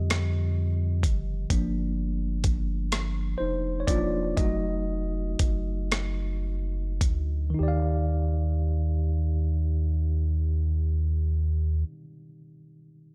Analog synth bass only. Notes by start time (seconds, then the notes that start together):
Already playing: F2
1.04 F#1
1.51 G1
3.41 F1
3.89 E1
4.38 F1
5.41 F#1
7.02 D2
7.60 D#2